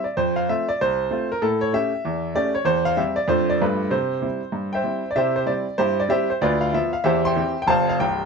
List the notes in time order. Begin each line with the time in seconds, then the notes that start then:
0.04 D5
0.17 F2 C5
0.36 F5
0.49 A3 C4 F4 E5
0.69 D5
0.81 C2 C5
1.11 A3 C4 F4
1.32 A#4
1.42 A2 A4
1.61 C#5
1.73 A3 C#4 G4 E5
2.05 E2
2.35 A3 C#4 G4 D5
2.55 C#5
2.65 E2 C5
2.85 F5
2.97 G3 C4 G4 E5
3.16 D5
3.28 F2 A3 D4 F4 C5
3.50 D5
3.61 G2 A3 D4 F4 B4
3.90 C3 C5
4.22 G3 C4 E4
4.52 G2
4.73 C5 E5 G5
4.84 G3 C4 E4
5.11 D5
5.16 C3 E4 G4 C5 E5
5.36 C5
5.46 G3 C4 E4 D5
5.78 G2 E4 G4 C5
6.00 D5
6.09 G3 C4 E4 G4 C5 E5
6.30 C5
6.41 D2 F4 B4 D5
6.61 F5
6.73 F3 B3 F4 E5
6.93 F5
7.04 E2 G4 C5 E5
7.25 E5 G5 C6
7.36 E3 C4 G4
7.62 G5
7.67 F1 F2 C5 F5 A5
7.89 F5
8.00 C1 C2 G5